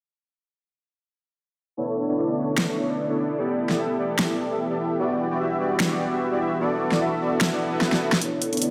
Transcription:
1.77 D3 A3 B3 C#4 D4 E4 A4 C#5
2.08 B3 D4 E4 A4 C#5
2.17 B3 D4 E4 A4 D5
2.38 B3 D4 E4 A4 C#5
2.58 B3 D4 E4 A4 D5, finger snap, snare
2.69 B3 D4 E4 A4 C#5
2.89 B3 D4 E4 A4 D5
3.09 B3 D4 E4 A4 C#5
3.18 B3 D4 E4 A4 D5
3.38 E3 B3 E4 G4 A4 D5
3.69 B3 E4 G4 A4 D5, snare
3.79 B3 E4 G4 A4 E5
3.99 B3 E4 G4 A4 D5
4.19 B3 E4 G4 A4 E5, finger snap, snare
4.30 B3 E4 G4 A4 D5
4.50 B3 E4 G4 A4 E5
4.70 B3 E4 G4 A4 D5
4.79 B3 E4 G4 A4 E5
4.99 G3 B3 D4 E4 F#4 G4 D5
5.30 B3 E4 F#4 G4 D5
5.40 B3 E4 F#4 G4 E5
5.60 B3 E4 F#4 G4 D5
5.80 B3 E4 F#4 G4 E5, finger snap, snare
5.91 B3 E4 F#4 G4 D5
6.11 B3 E4 F#4 G4 E5
6.31 B3 E4 F#4 G4 D5
6.40 B3 E4 F#4 G4 E5
6.60 B3 E4 F#4 A4 D5
6.92 B3 E4 F#4 A4 D5, snare
7.01 B3 E4 F#4 A4 E5
7.21 B3 E4 F#4 A4 D5
7.41 B3 E4 F#4 A4 E5, finger snap, snare, swell
7.52 B3 E4 F#4 A4 D5
7.72 B3 E4 F#4 A4 E5
7.81 snare
7.92 B3 E4 F#4 A4 D5, snare
8.01 B3 E4 F#4 A4 E5
8.12 snare
8.21 D3 A3 B3 C#4 D4 E4 A4 C#5, closed hi-hat
8.42 closed hi-hat
8.53 B3 D4 E4 A4 C#5, closed hi-hat
8.57 closed hi-hat
8.62 B3 D4 E4 A4 D5, closed hi-hat

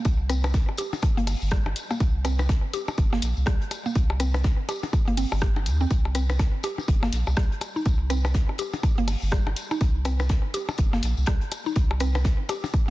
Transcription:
0.05 C2, kick, closed hi-hat, tambourine, percussion blips
0.30 C4, cross-stick, closed hi-hat, tambourine
0.44 cross-stick, closed hi-hat, tambourine, percussion blips
0.54 kick, snare, closed hi-hat, tambourine
0.69 percussion blips
0.77 G4, closed hi-hat, tambourine
0.93 closed hi-hat, tambourine, percussion blips
1.02 kick, closed hi-hat, percussion blips
1.17 G1 A#3, closed hi-hat
1.27 closed hi-hat, open hi-hat, tambourine, percussion blips
1.42 G1, tambourine
1.51 G3, kick, cross-stick, snare, closed hi-hat
1.66 G1, percussion blips
1.76 closed hi-hat, tambourine
1.91 A#3, tambourine, percussion blips
2.00 C2, kick, closed hi-hat, tambourine
2.25 C4, cross-stick, closed hi-hat, tambourine, percussion blips
2.39 cross-stick, closed hi-hat, tambourine, percussion blips
2.49 kick, snare, closed hi-hat, tambourine, percussion blips
2.73 G4, closed hi-hat, tambourine
2.88 tambourine, percussion blips
2.98 G1, kick, closed hi-hat, tambourine
3.13 G1 A#3, snare, percussion blips
3.22 A#1, snare, closed hi-hat, tambourine
3.37 C2, tambourine
3.46 C2 G3, kick, cross-stick, snare, closed hi-hat, tambourine, percussion blips
3.62 closed hi-hat
3.71 closed hi-hat, tambourine, percussion blips
3.86 A#3, tambourine
3.95 C2, kick, closed hi-hat, tambourine
4.10 percussion blips
4.20 C4, cross-stick, closed hi-hat, tambourine
4.34 cross-stick, closed hi-hat, tambourine, percussion blips
4.43 kick, snare, closed hi-hat, tambourine
4.69 G4, closed hi-hat, tambourine, percussion blips
4.83 closed hi-hat, tambourine, percussion blips
4.93 kick, closed hi-hat, tambourine, percussion blips
5.07 G1 A#3, closed hi-hat
5.17 C4, closed hi-hat, open hi-hat, tambourine
5.32 G1, tambourine, percussion blips
5.41 G4, kick, cross-stick, snare, closed hi-hat, tambourine
5.56 percussion blips
5.66 D#2, closed hi-hat, tambourine
5.80 C4, tambourine
5.90 C2, kick, closed hi-hat, tambourine
6.05 percussion blips
6.15 C4, cross-stick, closed hi-hat, tambourine
6.29 cross-stick, closed hi-hat, tambourine, percussion blips
6.39 kick, snare, closed hi-hat, tambourine, percussion blips
6.63 G4, closed hi-hat, tambourine, percussion blips
6.78 tambourine, percussion blips
6.88 G1, kick, closed hi-hat, tambourine
7.03 G1 A#3, snare, percussion blips
7.12 A#1, snare, closed hi-hat, tambourine
7.27 C2, tambourine, percussion blips
7.37 C2 G3, kick, cross-stick, snare, closed hi-hat, tambourine
7.52 closed hi-hat
7.61 closed hi-hat, tambourine, percussion blips
7.76 D#4, tambourine
7.86 C2, kick, closed hi-hat, tambourine, percussion blips
8.10 C4, cross-stick, closed hi-hat, tambourine
8.25 cross-stick, closed hi-hat, tambourine, percussion blips
8.34 kick, snare, closed hi-hat, tambourine
8.49 percussion blips
8.58 G4, closed hi-hat, tambourine
8.73 closed hi-hat, tambourine, percussion blips
8.83 kick, closed hi-hat, tambourine, percussion blips
8.98 G1 A#3, closed hi-hat
9.08 closed hi-hat, open hi-hat, tambourine, percussion blips
9.22 G1, tambourine
9.32 G3, kick, cross-stick, snare, tambourine
9.47 G1, percussion blips
9.56 closed hi-hat, tambourine
9.71 D#4, tambourine, percussion blips
9.81 C2, kick, closed hi-hat, tambourine
10.05 C4, cross-stick, closed hi-hat, tambourine, percussion blips
10.19 cross-stick, closed hi-hat, tambourine, percussion blips
10.29 kick, snare, closed hi-hat, tambourine, percussion blips
10.54 G4, closed hi-hat, tambourine
10.69 tambourine, percussion blips
10.78 G1, kick, closed hi-hat, tambourine
10.93 G1 A#3, snare, percussion blips
11.03 A#1, snare, closed hi-hat, tambourine
11.17 C2, tambourine
11.26 C2 G3, kick, cross-stick, snare, closed hi-hat, percussion blips
11.41 closed hi-hat
11.52 closed hi-hat, tambourine, percussion blips
11.66 D#4, tambourine
11.76 C2, kick, closed hi-hat, tambourine
11.91 percussion blips
12.00 C4, cross-stick, closed hi-hat, tambourine
12.15 cross-stick, closed hi-hat, tambourine, percussion blips
12.24 kick, snare, closed hi-hat, tambourine
12.49 G4, closed hi-hat, tambourine, percussion blips
12.64 closed hi-hat, tambourine, percussion blips
12.74 kick, closed hi-hat, tambourine, percussion blips

